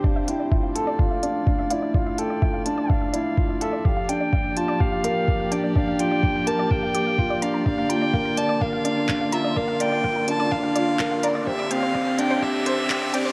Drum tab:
HH |-x-x-x-x|-x-x-x-x|-x-x-x-x|-x-x-x-x|
CP |--------|--------|--------|--------|
BD |o-o-o-o-|o-o-o-o-|o-o-o-o-|o-o-o-o-|

HH |-x-x-x-x|-x-x-x-x|-x-x-x-x|
CP |------x-|------x-|------x-|
BD |o-o-o-o-|o-o-o-o-|o-o-o-o-|